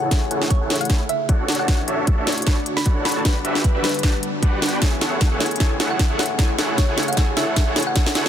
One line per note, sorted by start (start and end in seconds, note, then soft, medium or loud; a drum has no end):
0.00 0.09 A1 medium
0.00 1.46 C#3 medium
0.00 0.10 A3 medium
0.00 3.21 A3 medium
0.00 0.11 E4 medium
0.00 1.46 E4 medium
0.00 0.09 E4 medium
0.00 0.11 G#4 medium
0.00 1.46 G#4 medium
0.00 0.09 G#4 medium
0.00 0.09 A4 medium
0.00 0.12 C#5 loud
0.00 0.09 C#5 medium
0.00 0.22 F#5 medium
0.00 0.09 A5 loud
0.10 0.29 A1 medium
0.10 0.21 A3 medium
0.10 0.21 E4 medium
0.10 0.22 G#4 medium
0.10 0.21 C#5 medium
0.10 0.22 C#5 medium
0.10 kick medium
0.10 snare medium
0.10 closed hi-hat medium
0.31 0.59 A1 loud
0.31 0.59 E4 medium
0.31 0.59 G#4 medium
0.31 0.59 A4 medium
0.31 0.59 C#5 medium
0.31 0.59 F#5 medium
0.31 closed hi-hat medium
0.42 snare soft
0.50 0.79 C#5 medium
0.50 kick medium
0.50 closed hi-hat medium
0.61 0.88 A1 loud
0.61 0.76 E4 medium
0.61 0.76 G#4 medium
0.61 0.76 A4 medium
0.61 0.76 C#5 medium
0.61 0.76 F#5 loud
0.68 1.46 A3 medium
0.68 1.47 E4 medium
0.68 1.48 G#4 medium
0.68 1.48 C#5 medium
0.68 snare medium
0.68 closed hi-hat medium
0.75 closed hi-hat medium
0.81 0.95 F#5 medium
0.81 closed hi-hat soft
0.85 closed hi-hat medium
0.89 0.98 A1 medium
0.89 1.00 E4 medium
0.89 1.00 G#4 medium
0.89 1.00 A4 medium
0.89 1.00 C#5 medium
0.89 1.00 B5 loud
0.89 kick medium
0.89 snare medium
0.89 closed hi-hat medium
1.09 1.24 E5 medium
1.09 closed hi-hat medium
1.29 1.57 A1 loud
1.29 1.57 D4 medium
1.29 1.57 F#4 medium
1.29 1.57 A4 medium
1.29 1.57 C#5 medium
1.29 1.57 F#5 medium
1.29 kick medium
1.29 closed hi-hat medium
1.48 4.78 D3 medium
1.48 4.78 F#4 medium
1.48 3.23 C#5 medium
1.48 snare medium
1.48 closed hi-hat medium
1.52 closed hi-hat medium
1.55 closed hi-hat medium
1.59 1.66 A1 medium
1.59 1.66 D4 medium
1.59 1.66 F#4 medium
1.59 1.66 A4 medium
1.59 1.66 C#5 medium
1.59 2.14 F#5 medium
1.59 1.66 A5 loud
1.66 1.86 A1 medium
1.66 2.23 D4 medium
1.66 1.78 D4 loud
1.66 1.78 F#4 medium
1.66 2.25 F#4 medium
1.66 1.78 A4 medium
1.66 2.26 C#5 medium
1.66 1.78 F#5 loud
1.66 kick loud
1.66 snare medium
1.66 closed hi-hat medium
1.87 2.16 A1 medium
1.87 2.15 D4 medium
1.87 2.15 F#4 medium
1.87 2.15 A4 medium
1.87 2.15 C#5 medium
1.87 2.15 E5 medium
1.87 closed hi-hat medium
2.07 kick medium
2.07 closed hi-hat medium
2.18 2.45 A1 medium
2.18 2.33 D4 medium
2.18 2.33 F#4 medium
2.18 2.33 A4 medium
2.18 2.33 C#5 medium
2.18 2.33 E5 loud
2.25 3.22 D4 medium
2.25 3.23 F#4 medium
2.25 3.24 C#5 loud
2.25 snare medium
2.25 closed hi-hat soft
2.32 closed hi-hat medium
2.38 closed hi-hat soft
2.42 closed hi-hat medium
2.46 2.55 A1 medium
2.46 2.57 D4 medium
2.46 2.57 F#4 medium
2.46 2.57 A4 medium
2.46 2.57 C#5 medium
2.46 2.57 B5 loud
2.46 kick medium
2.46 snare medium
2.46 closed hi-hat medium
2.66 closed hi-hat medium
2.77 2.91 B5 medium
2.77 snare medium
2.86 3.14 A1 loud
2.86 3.14 D4 medium
2.86 3.14 F#4 medium
2.86 3.14 A4 medium
2.86 3.14 C#5 medium
2.86 3.13 F#5 loud
2.86 kick medium
2.86 closed hi-hat medium
3.05 3.29 B5 medium
3.05 snare medium
3.05 closed hi-hat soft
3.09 closed hi-hat medium
3.12 closed hi-hat medium
3.16 3.23 A1 medium
3.16 3.23 D4 medium
3.16 3.23 F#4 medium
3.16 3.23 A4 medium
3.16 3.23 C#5 medium
3.16 3.23 A5 medium
3.24 3.43 G1 medium
3.24 3.35 G3 medium
3.24 4.80 G3 medium
3.24 4.80 B3 medium
3.24 3.35 D4 medium
3.24 3.35 D4 loud
3.24 3.35 F#4 medium
3.24 3.35 G4 medium
3.24 3.35 B4 medium
3.24 3.36 B4 medium
3.24 3.35 F#5 loud
3.24 kick medium
3.24 snare medium
3.24 closed hi-hat medium
3.44 3.73 G1 medium
3.44 3.72 D4 medium
3.44 3.72 F#4 medium
3.44 3.72 G4 medium
3.44 3.72 B4 medium
3.44 3.72 E5 medium
3.44 closed hi-hat medium
3.55 snare medium
3.64 3.83 B4 medium
3.64 kick medium
3.64 closed hi-hat medium
3.75 4.02 G1 medium
3.75 3.89 D4 medium
3.75 3.89 F#4 medium
3.75 3.89 G4 medium
3.75 3.89 B4 medium
3.75 3.89 E5 loud
3.82 4.79 G3 medium
3.82 4.79 D4 medium
3.82 4.80 F#4 medium
3.82 4.39 B4 medium
3.82 snare medium
3.82 closed hi-hat soft
3.86 4.81 B4 medium
3.86 closed hi-hat medium
3.94 closed hi-hat soft
3.99 closed hi-hat medium
4.03 4.12 G1 medium
4.03 4.14 D4 medium
4.03 4.14 F#4 medium
4.03 4.14 G4 medium
4.03 4.14 B4 medium
4.03 4.14 A5 loud
4.03 kick medium
4.03 snare medium
4.03 closed hi-hat medium
4.23 closed hi-hat medium
4.42 4.71 G1 medium
4.42 4.70 D4 medium
4.42 4.70 F#4 medium
4.42 4.70 G4 medium
4.42 4.70 B4 medium
4.42 4.70 F#5 medium
4.42 kick medium
4.42 closed hi-hat medium
4.62 snare medium
4.62 closed hi-hat soft
4.66 closed hi-hat medium
4.69 closed hi-hat medium
4.73 4.80 G1 medium
4.73 4.80 D4 medium
4.73 4.80 F#4 medium
4.73 4.80 G4 medium
4.73 4.80 B4 medium
4.73 4.80 G5 loud
4.80 5.00 A1 medium
4.80 7.73 C#3 medium
4.80 5.37 A3 medium
4.80 8.29 A3 medium
4.80 5.38 E4 medium
4.80 4.92 E4 medium
4.80 7.73 E4 medium
4.80 7.73 G#4 medium
4.80 4.92 G#4 medium
4.80 5.39 G#4 medium
4.80 4.92 A4 medium
4.80 4.92 C#5 medium
4.80 4.92 G#5 loud
4.80 kick loud
4.80 snare medium
4.80 closed hi-hat medium
4.84 5.40 C#5 medium
5.01 5.30 A1 medium
5.01 5.29 E4 medium
5.01 5.29 G#4 medium
5.01 5.29 A4 medium
5.01 5.29 C#5 medium
5.01 5.29 F#5 medium
5.01 snare medium
5.01 closed hi-hat medium
5.21 kick loud
5.21 snare medium
5.21 closed hi-hat medium
5.31 5.58 A1 medium
5.31 5.46 E4 medium
5.31 5.46 G#4 medium
5.31 5.46 A4 medium
5.31 5.46 C#5 medium
5.31 5.46 F#5 medium
5.38 5.57 A3 medium
5.38 5.58 E4 medium
5.38 5.59 G#4 medium
5.38 5.60 C#5 medium
5.38 snare medium
5.38 closed hi-hat soft
5.46 closed hi-hat medium
5.51 closed hi-hat soft
5.56 6.16 A3 medium
5.56 6.17 E4 medium
5.56 closed hi-hat medium
5.60 5.78 A1 loud
5.60 5.70 E4 medium
5.60 5.70 G#4 medium
5.60 6.17 G#4 medium
5.60 5.70 A4 medium
5.60 5.70 C#5 medium
5.60 6.18 C#5 medium
5.60 5.70 G#5 medium
5.60 kick medium
5.60 snare medium
5.60 closed hi-hat medium
5.80 6.08 A1 loud
5.80 6.08 E4 medium
5.80 6.08 G#4 medium
5.80 6.08 A4 medium
5.80 6.08 C#5 medium
5.80 6.08 F#5 medium
5.80 snare medium
5.80 closed hi-hat medium
5.91 6.05 F#5 medium
5.99 kick medium
5.99 snare medium
5.99 closed hi-hat medium
6.10 6.37 A1 loud
6.10 6.25 E4 medium
6.10 6.25 G#4 medium
6.10 6.25 A4 medium
6.10 6.25 C#5 medium
6.10 6.25 F#5 medium
6.17 6.35 A3 medium
6.17 6.37 E4 medium
6.17 6.38 G#4 medium
6.17 6.50 F#5 medium
6.17 snare medium
6.17 closed hi-hat soft
6.21 6.38 C#5 loud
6.21 closed hi-hat medium
6.26 closed hi-hat medium
6.37 6.57 A1 medium
6.37 6.94 A3 medium
6.37 6.95 E4 medium
6.37 6.49 E4 medium
6.37 6.49 G#4 medium
6.37 6.96 G#4 medium
6.37 6.49 A4 medium
6.37 6.49 C#5 medium
6.37 6.96 C#5 medium
6.37 6.49 G#5 loud
6.37 kick loud
6.37 snare medium
6.37 closed hi-hat medium
6.58 6.86 A1 medium
6.58 6.86 E4 medium
6.58 6.86 G#4 medium
6.58 6.86 A4 medium
6.58 6.86 C#5 medium
6.58 6.86 F#5 medium
6.58 snare medium
6.58 closed hi-hat medium
6.78 7.06 C#5 medium
6.78 kick loud
6.78 snare medium
6.78 closed hi-hat medium
6.88 7.15 A1 loud
6.88 7.03 E4 medium
6.88 7.03 G#4 medium
6.88 7.03 A4 medium
6.88 7.03 C#5 medium
6.88 7.03 F#5 loud
6.95 7.14 A3 medium
6.95 7.15 E4 medium
6.95 7.16 G#4 medium
6.95 snare medium
6.95 closed hi-hat soft
6.99 7.17 C#5 loud
6.99 closed hi-hat medium
7.08 7.23 F#5 medium
7.08 closed hi-hat soft
7.13 7.72 A3 medium
7.13 7.74 E4 medium
7.13 closed hi-hat medium
7.17 7.35 A1 loud
7.17 7.27 E4 medium
7.17 7.27 G#4 medium
7.17 7.74 G#4 medium
7.17 7.27 A4 medium
7.17 7.27 C#5 medium
7.17 7.75 C#5 medium
7.17 7.27 G#5 loud
7.17 kick loud
7.17 snare medium
7.17 closed hi-hat medium
7.37 7.65 A1 medium
7.37 7.65 E4 medium
7.37 7.65 G#4 medium
7.37 7.65 A4 medium
7.37 7.65 C#5 medium
7.37 7.52 E5 medium
7.37 7.65 F#5 medium
7.37 snare medium
7.37 closed hi-hat medium
7.56 kick medium
7.56 snare medium
7.56 closed hi-hat medium
7.67 7.94 A1 loud
7.67 7.82 E4 medium
7.67 7.82 G#4 medium
7.67 7.82 A4 medium
7.67 7.82 C#5 medium
7.67 7.82 F#5 medium
7.74 8.29 D3 medium
7.74 7.92 A3 loud
7.74 8.29 C#4 medium
7.74 7.93 E4 medium
7.74 8.29 F#4 medium
7.74 7.95 G#4 medium
7.74 snare medium
7.74 closed hi-hat soft
7.78 7.95 C#5 loud
7.78 closed hi-hat medium
7.83 closed hi-hat medium
7.87 8.29 F#5 medium
7.94 8.14 A1 medium
7.94 8.29 A3 medium
7.94 8.29 E4 medium
7.94 8.06 E4 medium
7.94 8.06 G#4 medium
7.94 8.29 G#4 medium
7.94 8.06 A4 medium
7.94 8.06 C#5 medium
7.94 8.29 C#5 medium
7.94 8.06 G#5 loud
7.94 kick loud
7.94 snare medium
7.94 closed hi-hat medium
8.06 snare medium
8.15 8.29 A1 medium
8.15 8.29 E4 medium
8.15 8.29 G#4 medium
8.15 8.29 A4 medium
8.15 8.29 C#5 medium
8.15 8.29 F#5 medium
8.15 snare loud
8.15 closed hi-hat medium